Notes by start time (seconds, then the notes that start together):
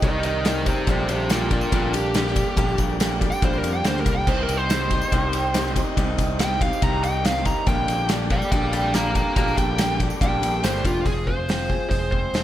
Already playing: C5 D#5 G5 D#6
0.02 C2 C3 D#3 G3 C4 D#4 G4 A#4 D#5, kick, ride, tambourine
0.23 A#4 D#5, ride, tambourine
0.44 C3 D#3 G3 C4 D#4 G4 A#4 D#5, snare, ride, tambourine
0.66 G3 D#4 G4 C5, kick, ride, tambourine
0.87 A#1 A#2 D3 G3 A#3 D4 G4 A#4 C5 D5 D6, kick, ride, tambourine
1.09 A#1 G4 C5, ride, tambourine
1.20 tambourine
1.29 D3 G3 A#3 D4 F4 G4 A#4, snare, ride, tambourine
1.50 G3 A#3 D4 F4 G4 A#4, kick, ride, tambourine
1.61 tambourine
1.72 A#1 A#2 D3 G3 A#3 D4 F4 G4 A#4, kick, ride, tambourine
1.93 G4, ride, tambourine
2.14 A#2 D3 G3 A#3 D4 G4, snare, ride, tambourine
2.27 snare
2.35 G3 D4 G4, kick, ride, tambourine
2.57 A#1 A#2 D3 G3 A#3 D4 G4, kick, ride, tambourine
2.68 tambourine
2.78 A#1, kick, ride, tambourine
2.89 tambourine
2.99 D3 G3 A#3 D4 G4, snare, ride, tambourine
3.21 G3 A#3 D4 G4, kick, ride, tambourine
3.30 G5, tambourine
3.42 A#1 A#2 D3 G3 A#3 D4 G4 C5, kick, ride
3.53 tambourine
3.58 A#4
3.63 F2, ride, tambourine
3.73 G5, tambourine
3.84 D2 A#2 D3 G3 A#3 D4 G4 C5, snare, ride, tambourine
3.96 snare
4.00 A#4
4.06 C2 G3 D4 G4, kick, ride, tambourine
4.15 G5
4.26 C2 C3 D#3 G3 C4 D#4 G4 C5 D#5 D#6, kick, crash, tambourine
4.43 A#4
4.48 C2, ride, tambourine
4.57 C5, tambourine
4.69 D#3 G3 C4 D#4 G4, snare, ride, tambourine
4.91 G3 C4 D#4 G4, kick, ride, tambourine
5.01 tambourine
5.10 C2 C3 D#3 G3 C4 D#4 G4, kick, ride, tambourine
5.33 G4, ride, tambourine
5.54 C3 D#3 G3 C4 D#4 G4, snare, ride, tambourine
5.66 snare
5.76 G3 C4 D#4 G4 A#4, kick, ride, tambourine
5.97 C2 C3 D#3 G3 C4 D#4 G4 C5, kick, ride, tambourine
6.18 C2, kick, ride, tambourine
6.30 tambourine
6.39 D#3 G3 C4 D#4 G4 G5, snare, ride, tambourine
6.61 G3 C4 D#4 G4 F5, kick, ride, tambourine
6.73 tambourine
6.82 C2 C3 D#3 G3 C4 D#4 G4 A#5, kick, ride, tambourine
7.03 G5, ride, tambourine
7.24 C3 D#3 G3 C4 D#4 G4 F5, snare, ride, tambourine
7.36 snare
7.45 G3 C4 G4 A#5, kick, ride, tambourine
7.66 A#1 A#2 D3 G3 A#3 D4 G4 A#4 D5 G5 D6, kick, ride, tambourine
7.88 A#1, ride, tambourine
8.00 tambourine
8.09 D3 G3 A#3 D4 G4, snare, ride, tambourine
8.30 A#3 D4 G4 D5 G5, kick, ride, tambourine
8.34 G3
8.42 tambourine
8.52 A#1 A#2 D3 G3 A#3 D4 G4 D5 G5, kick, ride, tambourine
8.73 D5 G5, ride, tambourine
8.94 A#2 D3 G3 A#3 D4 G4 F5 A#5, snare, ride, tambourine
9.15 G3 D4 G4 F5 A#5, kick, ride, tambourine
9.36 A#1 A#2 D3 G3 A#3 D4 G4 F5 A#5, kick, ride, tambourine
9.48 tambourine
9.57 A#1 G5, kick, ride, tambourine
9.78 D3 G3 A#3 D4 G4, snare, ride, tambourine
9.89 tambourine
10.00 G3 A#3 D4 G4, kick, ride, tambourine
10.10 tambourine
10.21 A#1 A#2 D3 G3 A#3 D4 G4 G5, kick, ride
10.41 A#1, ride, tambourine
10.54 tambourine
10.63 G1 A#2 D3 G3 A#3 D4 G4 C5, snare, ride, tambourine
10.75 snare
10.84 F1 G3 D4 F4 G4, kick, ride, tambourine
11.05 F1 F2 F3 C4 F4 G#4, kick, open hi-hat
11.27 C4 F4 G#4 C5, kick
11.49 F3 C4 F4 G#4, snare, open hi-hat
11.70 C4 F4 G#4, kick
11.90 F1 F3 G#3 C4 F4 G#4 C5, kick, open hi-hat
12.11 C4 C5, kick
12.33 F1 F3 G#3 C4 F4 G#4, snare, open hi-hat